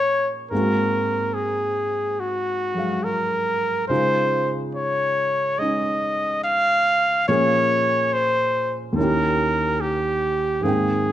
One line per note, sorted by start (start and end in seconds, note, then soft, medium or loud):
0.00 0.50 A#2 soft
0.00 0.51 F3 soft
0.00 0.51 G#3 soft
0.00 0.51 A#3 soft
0.00 0.52 C#4 soft
0.00 0.52 D#4 soft
0.00 0.30 C#5 medium
0.51 3.90 G#2 soft
0.51 2.75 G#3 soft
0.51 3.90 A#3 soft
0.51 3.91 C4 soft
0.51 1.35 A#4 medium
0.56 3.92 F#4 soft
1.34 2.21 G#4 medium
2.20 3.05 F#4 medium
2.74 3.89 F#3 soft
2.74 3.88 G#3 soft
2.74 3.91 F5 soft
3.04 3.87 A#4 medium
3.88 7.28 C#3 soft
3.88 5.57 G#3 soft
3.88 5.59 D#4 soft
3.88 7.29 F4 medium
3.88 4.52 C5 medium
4.75 5.60 C#5 medium
5.58 7.28 G#3 soft
5.58 7.27 C#4 soft
5.58 7.29 D#4 soft
5.58 6.43 D#5 medium
6.44 7.24 F5 loud
7.28 8.97 A#2 soft
7.28 8.97 F3 soft
7.28 8.97 A#3 soft
7.28 8.96 C#4 soft
7.28 8.97 G#4 medium
7.28 8.15 C#5 medium
8.13 8.79 C5 medium
8.92 10.61 D#2 soft
8.92 10.61 D#3 soft
8.92 9.82 A#4 medium
8.98 10.64 C#4 soft
8.98 10.65 E4 soft
9.03 10.67 G4 soft
9.81 10.65 G4 medium
10.61 11.12 G#2 soft
10.61 11.12 D#3 soft
10.61 11.12 A#3 soft
10.61 11.12 C4 soft
10.61 11.12 G#4 medium
10.66 11.12 G5 medium